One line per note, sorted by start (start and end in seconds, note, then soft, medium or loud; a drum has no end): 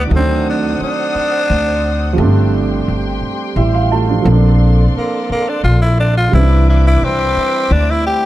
0.00 0.13 C3 soft
0.00 0.13 E3 soft
0.00 0.14 G3 medium
0.00 0.10 D4 medium
0.07 0.76 D2 loud
0.07 2.12 D#3 medium
0.07 2.13 F#3 medium
0.07 2.16 C5 medium
0.07 2.16 F#5 medium
0.11 2.15 A3 medium
0.11 2.16 C4 medium
0.11 2.16 D#6 medium
0.16 0.46 C4 medium
0.16 2.17 D4 medium
0.50 0.80 D4 medium
0.81 2.50 D4 loud
0.81 muted upright bass stroke soft
1.15 muted upright bass stroke soft
1.50 2.19 D2 medium
2.13 3.51 F3 medium
2.13 3.52 G3 medium
2.18 2.83 G1 loud
2.18 3.54 A3 medium
2.18 3.55 C4 medium
2.18 4.23 G4 medium
2.18 4.23 G5 medium
2.18 6.28 C6 medium
2.24 3.56 D4 medium
2.88 3.19 G1 medium
3.22 muted upright bass stroke soft
3.56 4.21 A1 medium
3.56 3.90 G3 soft
3.56 3.89 E4 medium
3.56 3.73 E5 medium
3.75 3.90 F5 medium
3.92 4.08 A3 medium
3.92 4.08 F4 medium
3.92 4.23 A5 medium
4.09 4.20 F3 soft
4.09 4.30 D4 medium
4.21 6.26 F3 medium
4.21 6.29 A4 medium
4.21 6.27 A4 medium
4.21 6.29 D5 medium
4.25 4.90 A#1 loud
4.25 6.29 A#3 medium
4.25 6.30 C4 medium
4.32 6.31 D4 medium
4.95 5.28 A#3 medium
4.95 muted upright bass stroke soft
5.30 5.50 A#3 medium
5.30 muted upright bass stroke soft
5.49 5.64 D4 medium
5.64 6.28 A#1 medium
5.64 5.80 F4 medium
5.82 5.97 E4 medium
6.00 6.15 D4 medium
6.18 6.32 F4 medium
6.29 6.37 D#3 soft
6.29 8.26 G3 medium
6.29 8.26 B4 medium
6.29 8.26 E5 medium
6.29 8.26 D6 medium
6.33 6.97 C2 loud
6.33 8.26 E3 medium
6.33 8.26 C4 medium
6.33 6.65 E4 medium
6.33 8.26 B4 medium
6.39 8.26 D4 medium
6.69 6.84 E4 medium
6.87 7.06 E4 medium
7.02 7.33 C2 medium
7.02 7.74 C4 loud
7.37 muted upright bass stroke soft
7.71 8.26 D2 loud
7.71 7.92 D4 medium
7.91 8.06 E4 loud
8.07 8.26 G4 loud